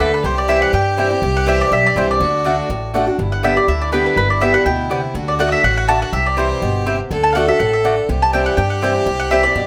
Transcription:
Already playing: fiddle A4
0.00 upright bass D2, steel-string acoustic guitar D3, mandolin B4 D5 F#5
0.14 mandolin B4
0.23 upright bass C2, steel-string acoustic guitar C3, fiddle G4, mandolin C5
0.38 mandolin D5
0.48 steel-string acoustic guitar E3 G3 C4 E4, mandolin C4 E4 C5 E5 G5
0.62 mandolin F#5
0.73 steel-string acoustic guitar G2, upright bass G2, mandolin G5
0.97 steel-string acoustic guitar E3 G3 C4 E4, mandolin C4 E4 C5 G5
1.10 steel-string acoustic guitar C4 E4
1.22 upright bass C2, steel-string acoustic guitar C3
1.37 mandolin F#5
1.46 steel-string acoustic guitar E3 G3 C4 E4, mandolin C4 E4 C5 E5 G5
1.61 mandolin D5
1.71 upright bass B1, steel-string acoustic guitar G2, mandolin E5
1.86 mandolin D5
1.96 upright bass C2, steel-string acoustic guitar E3 G3 C4 E4, mandolin C4 E4 C5 G5
2.11 mandolin D5
2.20 upright bass D2, steel-string acoustic guitar D3, fiddle F#4
2.44 steel-string acoustic guitar D3 A3 D4 F#4, mandolin A3 F#4 D5 F#5
2.69 upright bass A1, steel-string acoustic guitar A2
2.94 steel-string acoustic guitar D3 A3 D4 F#4, mandolin A3 F#4 D5 F#5
3.07 steel-string acoustic guitar D4 F#4
3.18 upright bass G1, steel-string acoustic guitar G2, fiddle E4
3.32 mandolin F#5
3.43 steel-string acoustic guitar D3 G3 B3 G4, mandolin B3 G4 D5 E5 G5
3.56 steel-string acoustic guitar B3 G4, mandolin D5
3.68 upright bass D2, steel-string acoustic guitar D3, mandolin E5
3.82 mandolin D5
3.92 steel-string acoustic guitar D3 G3 B3 G4, mandolin B3 G4 B4 D5 G5
4.06 mandolin B4
4.16 upright bass G1, steel-string acoustic guitar G2, mandolin B4
4.30 mandolin D5
4.41 steel-string acoustic guitar D3 G3 B3 G4, mandolin B3 G4 D5 E5 G5
4.54 steel-string acoustic guitar B3 G4, mandolin F#5
4.65 upright bass D2, steel-string acoustic guitar B2, mandolin G5
4.90 steel-string acoustic guitar C3, mandolin B3 G4 D5 G5
5.14 upright bass D2, steel-string acoustic guitar D3, fiddle F#4
5.28 mandolin D5
5.39 steel-string acoustic guitar D3 A3 D4 F#4, mandolin A3 F#4 D5 F#5
5.49 mandolin D#5 E5
5.64 upright bass A1, steel-string acoustic guitar A2, mandolin F#5
5.77 mandolin F#5
5.87 steel-string acoustic guitar D3, mandolin A3 F#4 D5 F#5 A5
6.02 mandolin F#5
6.13 upright bass C2, steel-string acoustic guitar C3, fiddle G4, mandolin E5
6.26 mandolin D5
6.37 steel-string acoustic guitar E3 G3 C4 E4, mandolin C4 E4 C5 G5
6.62 upright bass G1, steel-string acoustic guitar B2
6.86 steel-string acoustic guitar C3, mandolin C4 E4 C5 G5
7.11 upright bass D2, steel-string acoustic guitar D3, fiddle A4
7.23 mandolin A5
7.33 steel-string acoustic guitar D3 A3 D4, mandolin A3 F#4 D5 F5 F#5
7.37 steel-string acoustic guitar F#4
7.48 steel-string acoustic guitar D4 F#4, mandolin E5
7.59 upright bass A1, steel-string acoustic guitar A2, mandolin F#5
7.73 mandolin E5
7.84 steel-string acoustic guitar D3, mandolin A3 F#4 D5 F#5
8.09 upright bass C2, steel-string acoustic guitar C3, fiddle G4
8.22 mandolin A5
8.33 steel-string acoustic guitar E3 G3 C4 E4, mandolin C4 E4 C5 G5
8.46 mandolin F#5
8.57 upright bass G2, steel-string acoustic guitar G2, mandolin G5
8.70 mandolin F#5
8.82 steel-string acoustic guitar E3 G3 C4 E4, mandolin C4 E4 C5 G5
9.06 upright bass C2, steel-string acoustic guitar C3
9.20 mandolin F#5
9.31 steel-string acoustic guitar E3 G3 C4 E4, mandolin C4 E4 C5 E5 G5
9.43 steel-string acoustic guitar C4 E4, mandolin D5
9.55 upright bass G2, steel-string acoustic guitar B2

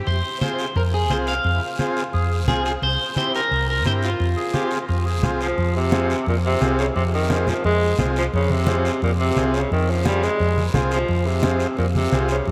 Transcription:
0.07 fingered electric bass F2, clean electric guitar C5, long guiro
0.41 transistor combo organ C4 F4 G#4, clean electric guitar C5, high conga, short guiro
0.59 short guiro
0.75 fingered electric bass F2, clean electric guitar A#4, long guiro
0.94 clean electric guitar G#4
1.10 fingered electric bass C2, transistor combo organ C4 F4 G#4, clean electric guitar C5, high conga, short guiro
1.27 clean electric guitar F5, short guiro
1.44 fingered electric bass F2, long guiro
1.55 tenor saxophone E4
1.63 tenor saxophone F4
1.79 transistor combo organ C4 F4 G#4, high conga, short guiro
1.97 short guiro
2.13 fingered electric bass F2, tenor saxophone G#4, long guiro
2.48 fingered electric bass C2, transistor combo organ C4 F4 G#4, clean electric guitar G#4, high conga, low conga, short guiro
2.65 clean electric guitar G#4, short guiro
2.82 fingered electric bass C2, clean electric guitar C5, long guiro
3.16 transistor combo organ C4 E4 G4, clean electric guitar C5, high conga, short guiro
3.35 clean electric guitar A#4, short guiro
3.51 fingered electric bass C2, long guiro
3.70 clean electric guitar A#4
3.85 fingered electric bass G2, transistor combo organ C4 E4 G4, clean electric guitar C5, high conga, short guiro
4.03 clean electric guitar F4, short guiro
4.20 fingered electric bass F2, long guiro
4.37 tenor saxophone G#4
4.54 transistor combo organ C4 F4 G#4, tenor saxophone G4, high conga, short guiro
4.71 tenor saxophone F4, short guiro
4.89 fingered electric bass F2, tenor saxophone F4, long guiro
5.06 tenor saxophone G#4
5.23 fingered electric bass C2, transistor combo organ C4 F4 G#4, tenor saxophone F4, high conga, low conga, short guiro
5.41 tenor saxophone F3, short guiro
5.58 fingered electric bass F2, high conga, long guiro
5.76 tenor saxophone C3
5.92 transistor combo organ C4 F4 G#4, high conga, short guiro
6.10 short guiro
6.26 fingered electric bass F2, tenor saxophone A#2, high conga, long guiro
6.46 tenor saxophone C3
6.60 fingered electric bass C2, transistor combo organ C4 F4 G#4, high conga, short guiro
6.79 tenor saxophone C#3, short guiro
6.96 fingered electric bass F2, tenor saxophone C3, high conga, long guiro
7.14 tenor saxophone D#3
7.30 transistor combo organ C4 F4 G#4, high conga, short guiro
7.47 tenor saxophone F3, low conga, short guiro
7.64 fingered electric bass F2, tenor saxophone G#3, high conga, long guiro
7.99 fingered electric bass C2, transistor combo organ C4 F4 G#4, high conga, low conga, short guiro
8.16 tenor saxophone F3, short guiro
8.33 fingered electric bass F2, tenor saxophone C#3, high conga, long guiro
8.50 tenor saxophone C3, high conga
8.67 transistor combo organ C4 F4 G#4, high conga, short guiro
8.85 short guiro
9.02 fingered electric bass F2, tenor saxophone A#2, high conga, long guiro
9.20 tenor saxophone C3
9.36 fingered electric bass C2, transistor combo organ C4 F4 G#4, high conga, short guiro
9.54 tenor saxophone C#3, short guiro
9.71 fingered electric bass F2, tenor saxophone D#3, high conga, long guiro
9.90 tenor saxophone F3
10.05 tenor saxophone G3, transistor combo organ C4 F4 G#4, high conga, short guiro
10.23 tenor saxophone G#3, short guiro
10.40 fingered electric bass F2, high conga, long guiro
10.57 high conga
10.74 fingered electric bass C2, transistor combo organ C4 F4 G#4, high conga, low conga, short guiro
10.91 tenor saxophone F3, short guiro
11.09 fingered electric bass F2, high conga, long guiro
11.27 tenor saxophone C3
11.43 transistor combo organ C4 F4 G#4, high conga, short guiro
11.60 short guiro
11.77 fingered electric bass F2, tenor saxophone A#2, high conga, long guiro
11.95 tenor saxophone C3, high conga
12.11 fingered electric bass C2, transistor combo organ C4 F4 G#4, high conga, short guiro
12.28 tenor saxophone C#3, short guiro
12.45 fingered electric bass F2, tenor saxophone C3, high conga, long guiro

